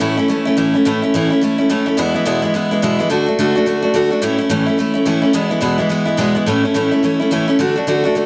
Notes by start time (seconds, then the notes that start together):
0.00 A2 E3 A3 C#4 E4
0.17 A3 C#4 E4
0.28 E3 A3 C#4 E4
0.45 A3 C#4 E4
0.57 A2 E3 A3 C#4 E4
0.74 A3 C#4 E4
0.85 A2 E3 A3 C#4 E4
1.02 A3 C#4 E4
1.14 A2 E3 A3 C#4 E4
1.30 A3 C#4 E4
1.41 E3 A3 C#4 E4
1.58 A3 C#4 E4
1.70 A2 E3 A3 C#4 E4
1.86 A3 C#4 E4
1.97 E2 B2 E3 G#3 B3 E4
2.14 E3 G#3 B3 E4
2.25 E2 B2 E3 G#3 B3 E4
2.42 E3 G#3 B3 E4
2.54 E3 G#3 B3 E4
2.71 E3 G#3 B3 E4
2.82 E2 B2 E3 G#3 B3 E4
2.99 E3 G#3 B3 E4
3.10 D3 A3 D4 F#4
3.26 A3 D4 F#4
3.39 D3 A3 D4 F#4
3.55 A3 D4 F#4
3.66 D3 A3 D4 F#4
3.82 A3 D4 F#4
3.94 D3 A3 D4 F#4
4.10 A3 D4 F#4
4.22 A2 E3 A3 C#4 E4
4.38 A3 C#4 E4
4.50 A2 E3 A3 C#4 E4
4.66 A3 C#4 E4
4.78 E3 A3 C#4 E4
4.94 A3 C#4 E4
5.05 A2 E3 A3 C#4 E4
5.22 A3 C#4 E4
5.33 E2 B2 E3 G#3 B3 E4
5.50 E3 G#3 B3 E4
5.61 E2 B2 E3 G#3 B3 E4
5.78 E3 G#3 B3 E4
5.89 E3 G#3 B3 E4
6.05 E3 G#3 B3 E4
6.17 E2 B2 E3 G#3 B3 E4
6.35 E3 G#3 B3 E4
6.46 A2 E3 A3 C#4 E4
6.63 A3 C#4 E4
6.74 A2 E3 A3 C#4 E4
6.91 A3 C#4 E4
7.03 E3 A3 C#4 E4
7.20 A3 C#4 E4
7.31 A2 E3 A3 C#4 E4
7.48 A3 C#4 E4
7.59 D3 A3 D4 F#4
7.76 A3 D4 F#4
7.87 D3 A3 D4 F#4
8.04 A3 D4 F#4
8.15 D3 A3 D4 F#4